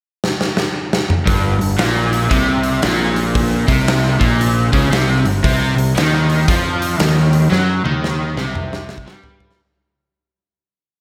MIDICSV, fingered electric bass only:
0, 0, Header, 1, 2, 480
1, 0, Start_track
1, 0, Tempo, 521286
1, 1165, Time_signature, 4, 2, 24, 8
1, 10136, End_track
2, 0, Start_track
2, 0, Title_t, "Fingered electric bass"
2, 0, Program_c, 0, 33
2, 1176, Note_on_c, 0, 31, 89
2, 1455, Note_off_c, 0, 31, 0
2, 1490, Note_on_c, 0, 31, 70
2, 1643, Note_off_c, 0, 31, 0
2, 1653, Note_on_c, 0, 34, 86
2, 2095, Note_off_c, 0, 34, 0
2, 2133, Note_on_c, 0, 36, 79
2, 2574, Note_off_c, 0, 36, 0
2, 2620, Note_on_c, 0, 34, 95
2, 3359, Note_off_c, 0, 34, 0
2, 3396, Note_on_c, 0, 36, 90
2, 3837, Note_off_c, 0, 36, 0
2, 3876, Note_on_c, 0, 34, 91
2, 4317, Note_off_c, 0, 34, 0
2, 4361, Note_on_c, 0, 37, 92
2, 4516, Note_off_c, 0, 37, 0
2, 4524, Note_on_c, 0, 36, 91
2, 4805, Note_off_c, 0, 36, 0
2, 4834, Note_on_c, 0, 31, 77
2, 4991, Note_off_c, 0, 31, 0
2, 5006, Note_on_c, 0, 36, 94
2, 5286, Note_off_c, 0, 36, 0
2, 5319, Note_on_c, 0, 36, 76
2, 5474, Note_off_c, 0, 36, 0
2, 5494, Note_on_c, 0, 39, 91
2, 5932, Note_off_c, 0, 39, 0
2, 5971, Note_on_c, 0, 41, 88
2, 6411, Note_off_c, 0, 41, 0
2, 6448, Note_on_c, 0, 39, 89
2, 6889, Note_off_c, 0, 39, 0
2, 6922, Note_on_c, 0, 42, 83
2, 7204, Note_off_c, 0, 42, 0
2, 7236, Note_on_c, 0, 39, 87
2, 7677, Note_off_c, 0, 39, 0
2, 7699, Note_on_c, 0, 36, 79
2, 8320, Note_off_c, 0, 36, 0
2, 8358, Note_on_c, 0, 43, 96
2, 8807, Note_off_c, 0, 43, 0
2, 10136, End_track
0, 0, End_of_file